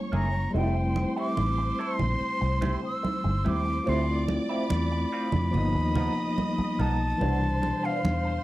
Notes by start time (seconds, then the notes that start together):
Already playing: G#3 A#3 C#4 E4 C#5 C#6
0.12 F#1 A#3 E4 G#4 A#5, high conga
0.33 muted clean electric guitar stroke
0.51 F1 G3 A3 C5 C6
0.55 C4 E4 G4 G5
0.75 muted clean electric guitar stroke
0.96 muted clean electric guitar stroke, muted conga
1.16 A3 E4 G4 D6
1.37 A1, muted clean electric guitar stroke, high conga
1.58 muted clean electric guitar stroke
1.79 A3 E4 A4 C6
1.99 A#1, muted clean electric guitar stroke, low conga
2.41 C2, muted clean electric guitar stroke
2.61 A3 E4 G4, muted conga, low conga
2.82 E6, muted clean electric guitar stroke
3.03 muted clean electric guitar stroke, high conga
3.24 G1, muted clean electric guitar stroke, high conga
3.44 D#2 G3 A3 C4 E4 G4, high conga
3.48 D6
3.65 muted clean electric guitar stroke
3.84 D2 F3 A3 C4 E4 F4 D5 D6, muted conga
3.89 E4 C6
4.28 muted clean electric guitar stroke, muted conga
4.49 F3 C4 E4 B5
4.70 E2, muted clean electric guitar stroke, high conga
4.92 muted clean electric guitar stroke
5.12 F3 C4 F4
5.32 F2, muted clean electric guitar stroke, low conga
5.51 G1 F3 A#3 B3 D#5 D#6, low conga
5.57 D#4
5.75 D#2, muted clean electric guitar stroke
5.95 F3 B3 D#4, muted conga, low conga
6.17 muted clean electric guitar stroke
6.38 muted clean electric guitar stroke, high conga
6.58 muted clean electric guitar stroke, muted fingered electric bass stroke, high conga
6.79 B1 F3 B3 D#4 A5, high conga
7.00 muted clean electric guitar stroke
7.18 C2 B2 E3 G3 B3 C5 C6, muted conga
7.22 D4
7.62 muted clean electric guitar stroke, muted conga
7.83 E3 B3 D4 F5
8.04 E2, muted clean electric guitar stroke, high conga
8.25 muted clean electric guitar stroke